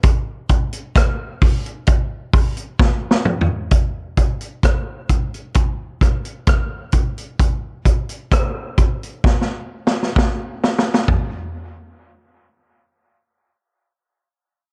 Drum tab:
HH |x-----x--x--x-----o--x--x-----o--x--------------|x-----x--x--x-----x--x--x-----x--x--x-----x--x--|x-----x--x--x-----x--x--------------------------|------------------------------------------------|
SD |------------r-----------------------o---o-------|------------r-----------------r-----r-----------|------------r-----------o-o-----o-o-o-----o-o-o-|------------------------------------------------|
T2 |------------------------------------------o-----|------------------------------------------------|------------------------------------------------|------------------------------------------------|
FT |--------------------------------------------o---|------------------------------------------------|------------------------------------------------|o-----------------------------------------------|
BD |o-----o-----o-----o-----o-----o-----o-----------|o-----o-----o-----o-----o-----o-----o-----o-----|o-----o-----o-----o-----o-----------o-----------|o-----------------------------------------------|